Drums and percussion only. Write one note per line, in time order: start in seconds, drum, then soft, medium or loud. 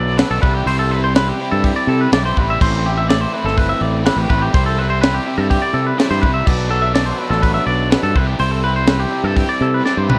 0.18 snare loud
0.18 open hi-hat medium
0.43 kick loud
0.67 open hi-hat medium
1.15 snare loud
1.15 open hi-hat medium
1.64 kick medium
1.64 open hi-hat medium
2.12 snare loud
2.12 open hi-hat medium
2.25 snare soft
2.37 kick medium
2.61 kick loud
2.61 crash loud
3.10 snare loud
3.10 open hi-hat medium
3.48 snare soft
3.58 kick medium
3.58 open hi-hat medium
4.06 snare loud
4.06 open hi-hat medium
4.30 kick medium
4.54 kick loud
4.54 open hi-hat medium
5.03 snare loud
5.03 open hi-hat medium
5.51 kick medium
5.51 open hi-hat medium
5.99 snare loud
5.99 open hi-hat medium
6.12 snare soft
6.23 kick medium
6.47 kick loud
6.47 crash loud
6.95 snare loud
6.95 open hi-hat medium
7.32 snare soft
7.43 kick medium
7.43 open hi-hat medium
7.92 snare loud
7.92 open hi-hat medium
8.04 snare soft
8.16 kick loud
8.39 open hi-hat medium
8.87 snare loud
8.87 open hi-hat medium
9.37 kick medium
9.37 open hi-hat medium
9.86 snare medium
10.09 mid tom medium